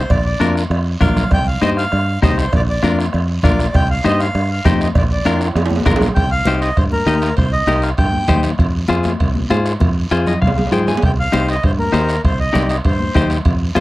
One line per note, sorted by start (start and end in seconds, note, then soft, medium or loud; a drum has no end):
0.00 0.11 C5 medium
0.10 0.35 A#1 loud
0.10 0.24 D5 medium
0.10 bombo low medium
0.10 bombo rim medium
0.10 cowbell loud
0.10 high conga soft
0.10 long guiro medium
0.25 0.54 D5 medium
0.40 0.65 F2 medium
0.40 0.62 D4 medium
0.40 0.62 F4 medium
0.40 0.62 A#4 medium
0.40 bombo rim medium
0.40 cowbell medium
0.40 high conga medium
0.40 short guiro medium
0.56 bombo rim medium
0.56 short guiro medium
0.70 0.95 F2 medium
0.70 bombo rim medium
0.70 cowbell medium
0.70 high conga soft
0.70 long guiro medium
1.01 1.26 A#1 loud
1.01 1.22 D4 medium
1.01 1.23 F4 medium
1.01 1.23 A#4 medium
1.01 1.30 F5 medium
1.01 bombo low medium
1.01 bombo rim medium
1.01 cowbell medium
1.01 high conga medium
1.01 low conga medium
1.01 short guiro medium
1.17 bombo rim medium
1.17 low conga medium
1.17 short guiro medium
1.31 1.56 C2 loud
1.31 1.47 G5 loud
1.31 bombo low medium
1.31 bombo rim medium
1.31 cowbell loud
1.31 high conga soft
1.31 long guiro medium
1.47 1.61 F5 medium
1.61 1.86 G2 medium
1.61 1.83 D#4 medium
1.61 1.83 G4 medium
1.61 1.84 C5 medium
1.61 1.70 D#5 loud
1.61 bombo rim medium
1.61 cowbell medium
1.61 high conga medium
1.61 short guiro medium
1.77 2.20 F5 loud
1.77 bombo rim medium
1.77 short guiro medium
1.92 2.17 G2 medium
1.92 bombo rim medium
1.92 cowbell medium
1.92 high conga soft
1.92 long guiro medium
2.22 2.47 C2 loud
2.22 2.44 D#4 medium
2.22 2.44 G4 medium
2.22 2.44 C5 medium
2.22 2.38 D#5 medium
2.22 bombo low medium
2.22 bombo rim medium
2.22 cowbell medium
2.22 high conga medium
2.22 low timbale medium
2.22 short guiro medium
2.38 2.53 C5 medium
2.38 bombo rim medium
2.38 short guiro medium
2.53 2.77 A#1 loud
2.53 2.62 D5 medium
2.53 bombo low medium
2.53 bombo rim medium
2.53 cowbell loud
2.53 high conga soft
2.53 long guiro medium
2.69 2.97 D5 medium
2.83 3.07 F2 medium
2.83 3.04 D4 medium
2.83 3.05 F4 medium
2.83 3.05 A#4 medium
2.83 bombo rim medium
2.83 cowbell medium
2.83 high conga medium
2.83 short guiro medium
2.99 bombo rim medium
2.99 short guiro medium
3.13 3.38 F2 medium
3.13 bombo rim medium
3.13 cowbell loud
3.13 high conga soft
3.13 long guiro medium
3.43 3.68 A#1 loud
3.43 3.65 D4 medium
3.43 3.65 F4 medium
3.43 3.65 A#4 medium
3.43 3.75 D5 medium
3.43 bombo low medium
3.43 bombo rim medium
3.43 cowbell medium
3.43 high conga medium
3.43 low conga medium
3.43 short guiro medium
3.59 bombo rim medium
3.59 short guiro medium
3.74 3.99 C2 loud
3.74 3.88 G5 loud
3.74 bombo low medium
3.74 bombo rim medium
3.74 cowbell loud
3.74 high conga soft
3.74 long guiro medium
3.91 4.04 F5 medium
4.04 4.29 G2 medium
4.04 4.26 D#4 medium
4.04 4.26 G4 medium
4.04 4.26 C5 medium
4.04 4.20 D#5 loud
4.04 bombo rim loud
4.04 cowbell medium
4.04 high conga medium
4.04 short guiro medium
4.20 4.50 F5 loud
4.20 bombo rim medium
4.20 short guiro medium
4.35 4.59 G2 medium
4.35 bombo rim medium
4.35 cowbell medium
4.35 high conga soft
4.35 long guiro medium
4.51 4.65 F5 medium
4.65 4.89 F2 medium
4.65 4.86 D#4 medium
4.65 4.87 G4 medium
4.65 4.87 C5 medium
4.65 4.80 D#5 medium
4.65 bombo low medium
4.65 bombo rim medium
4.65 cowbell medium
4.65 high conga medium
4.65 low timbale medium
4.65 short guiro medium
4.81 4.89 D#5 medium
4.81 bombo rim medium
4.81 short guiro medium
4.95 5.20 A#1 loud
4.95 5.04 D5 medium
4.95 bombo low medium
4.95 bombo rim medium
4.95 cowbell loud
4.95 high conga soft
4.95 long guiro medium
5.12 5.39 D5 medium
5.25 5.50 F2 medium
5.25 5.47 D4 medium
5.25 5.47 F4 medium
5.25 5.47 A#4 medium
5.25 bombo rim medium
5.25 cowbell medium
5.25 high conga medium
5.25 high timbale medium
5.25 short guiro medium
5.36 high timbale medium
5.41 bombo rim medium
5.41 short guiro medium
5.46 high timbale medium
5.55 5.80 F2 medium
5.55 bombo rim medium
5.55 cowbell loud
5.55 high conga soft
5.55 low timbale medium
5.55 long guiro medium
5.66 high timbale loud
5.70 high conga medium
5.76 low timbale medium
5.80 high conga medium
5.86 6.10 A#1 medium
5.86 6.07 D4 medium
5.86 6.07 F4 medium
5.86 6.08 A#4 loud
5.86 bombo low medium
5.86 bombo rim medium
5.86 cowbell medium
5.86 low timbale medium
5.86 short guiro medium
5.91 low conga medium
5.96 low timbale loud
6.01 bombo rim medium
6.01 low conga medium
6.01 short guiro medium
6.06 low timbale medium
6.15 6.41 C2 loud
6.15 6.30 G5 loud
6.15 bombo low medium
6.15 bombo rim medium
6.15 high conga soft
6.15 high timbale medium
6.15 long guiro medium
6.31 6.60 F5 loud
6.45 6.71 C2 medium
6.45 6.68 D#4 medium
6.45 6.69 G4 medium
6.45 6.69 C5 medium
6.45 bombo rim medium
6.45 high conga medium
6.45 high timbale medium
6.45 short guiro medium
6.61 6.77 D#5 medium
6.61 bombo rim medium
6.61 high timbale medium
6.61 short guiro medium
6.77 7.02 G2 medium
6.77 6.84 C5 medium
6.77 bombo low medium
6.77 bombo rim medium
6.77 high conga soft
6.77 high timbale medium
6.77 long guiro medium
6.92 7.35 A#4 medium
6.92 high conga medium
7.06 7.31 D#2 medium
7.06 7.28 D#4 medium
7.06 7.29 G4 medium
7.06 7.29 D#5 medium
7.06 bombo rim medium
7.06 high conga medium
7.06 high timbale medium
7.06 short guiro medium
7.22 bombo rim medium
7.22 high timbale medium
7.22 short guiro medium
7.36 7.62 C2 loud
7.36 7.51 C5 medium
7.36 bombo low medium
7.36 bombo rim medium
7.36 high conga soft
7.36 high timbale medium
7.36 long guiro medium
7.53 7.81 D#5 loud
7.67 7.92 C2 medium
7.67 7.89 D#4 medium
7.67 7.89 G4 medium
7.67 7.90 A#4 medium
7.67 bombo rim medium
7.67 high conga medium
7.67 high timbale medium
7.67 short guiro medium
7.82 7.90 F5 medium
7.82 bombo rim medium
7.82 high timbale medium
7.82 short guiro medium
7.97 8.23 G2 medium
7.97 8.41 G5 medium
7.97 bombo low medium
7.97 bombo rim medium
7.97 high conga soft
7.97 high timbale medium
7.97 long guiro medium
8.13 high conga medium
8.28 8.53 D#2 medium
8.28 8.50 D#4 medium
8.28 8.50 G4 medium
8.28 8.50 C5 medium
8.28 bombo low medium
8.28 bombo rim medium
8.28 high conga medium
8.28 low conga medium
8.28 high timbale medium
8.28 short guiro medium
8.43 bombo rim medium
8.43 high timbale medium
8.43 short guiro medium
8.58 8.84 F2 loud
8.58 bombo low medium
8.58 bombo rim medium
8.58 high conga soft
8.58 high timbale medium
8.58 long guiro medium
8.88 9.14 F2 medium
8.88 9.11 F4 medium
8.88 9.11 G#4 medium
8.88 9.11 C5 medium
8.88 bombo rim medium
8.88 high conga medium
8.88 high timbale medium
8.88 short guiro medium
9.03 bombo rim medium
9.03 high conga medium
9.03 high timbale medium
9.03 short guiro medium
9.20 9.45 C2 medium
9.20 bombo low medium
9.20 bombo rim medium
9.20 high conga soft
9.20 high timbale medium
9.20 long guiro medium
9.35 high conga medium
9.50 9.75 G#2 medium
9.50 9.72 F4 medium
9.50 9.72 G#4 medium
9.50 9.72 C5 medium
9.50 bombo rim medium
9.50 high conga medium
9.50 high timbale medium
9.50 low timbale medium
9.50 short guiro medium
9.65 bombo rim medium
9.65 high timbale medium
9.65 short guiro medium
9.80 10.06 F2 loud
9.80 bombo low medium
9.80 bombo rim medium
9.80 high conga medium
9.80 high timbale medium
9.80 long guiro medium
10.11 10.36 F2 medium
10.11 10.33 F4 medium
10.11 10.33 G#4 medium
10.11 10.27 C5 medium
10.11 bombo rim medium
10.11 high timbale medium
10.11 short guiro medium
10.26 10.41 D#5 medium
10.26 bombo rim medium
10.26 low conga medium
10.26 high timbale medium
10.26 short guiro medium
10.42 10.67 C2 medium
10.42 10.70 F5 medium
10.42 bombo low medium
10.42 bombo rim medium
10.42 low conga medium
10.42 long guiro medium
10.47 low timbale medium
10.58 low conga medium
10.58 low timbale medium
10.67 low timbale medium
10.72 10.96 G#2 medium
10.72 10.93 F4 medium
10.72 10.94 G#4 medium
10.72 10.94 C5 medium
10.72 10.86 G5 medium
10.72 bombo rim medium
10.72 low conga medium
10.72 short guiro medium
10.87 11.02 G#5 medium
10.87 bombo rim medium
10.87 low conga medium
10.87 low timbale medium
10.87 short guiro medium
10.97 low timbale medium
11.02 11.27 C2 medium
11.02 11.11 G5 medium
11.02 bombo low medium
11.02 bombo rim medium
11.02 high conga soft
11.02 high timbale medium
11.02 long guiro medium
11.20 11.47 F5 loud
11.32 11.58 C2 medium
11.32 11.54 D#4 medium
11.32 11.54 G4 medium
11.32 11.55 C5 medium
11.32 bombo rim medium
11.32 high conga loud
11.32 high timbale medium
11.32 short guiro medium
11.48 11.63 D#5 medium
11.48 bombo rim medium
11.48 high timbale medium
11.48 short guiro medium
11.63 11.88 G2 medium
11.63 11.71 C5 medium
11.63 bombo low medium
11.63 bombo rim medium
11.63 high conga soft
11.63 high timbale medium
11.63 long guiro medium
11.79 12.21 A#4 medium
11.79 high conga medium
11.92 12.18 D#2 medium
11.92 12.14 D#4 medium
11.92 12.15 G4 medium
11.92 12.15 C5 medium
11.92 bombo rim medium
11.92 high conga medium
11.92 high timbale medium
11.92 low timbale medium
11.92 short guiro medium
12.09 bombo rim medium
12.09 high timbale medium
12.09 short guiro medium
12.24 12.49 C2 loud
12.24 12.39 C5 medium
12.24 bombo low medium
12.24 bombo rim medium
12.24 high conga soft
12.24 high timbale medium
12.24 long guiro medium
12.40 12.68 D#5 medium
12.53 12.79 C2 medium
12.53 12.75 D#4 medium
12.53 12.75 G4 medium
12.53 12.75 D5 medium
12.53 bombo rim medium
12.53 high conga medium
12.53 low conga medium
12.53 high timbale medium
12.53 short guiro medium
12.69 12.76 D#5 medium
12.69 bombo rim medium
12.69 high timbale medium
12.69 short guiro medium
12.85 13.09 G2 medium
12.85 13.28 C5 medium
12.85 bombo low medium
12.85 bombo rim medium
12.85 high conga soft
12.85 high timbale medium
12.85 long guiro medium
13.00 high conga medium
13.15 13.40 D#2 medium
13.15 13.36 D#4 medium
13.15 13.37 G4 medium
13.15 13.37 C5 medium
13.15 bombo low medium
13.15 bombo rim medium
13.15 high conga medium
13.15 low conga medium
13.15 high timbale medium
13.15 short guiro medium
13.30 bombo rim medium
13.30 high timbale medium
13.30 short guiro medium
13.45 13.70 F2 loud
13.45 bombo low medium
13.45 bombo rim medium
13.45 high conga soft
13.45 high timbale medium
13.45 long guiro medium
13.75 13.80 F2 medium
13.75 13.80 F4 medium
13.75 13.80 G#4 medium
13.75 13.80 C5 loud
13.75 bombo rim medium
13.75 high conga medium
13.75 high timbale medium
13.75 short guiro medium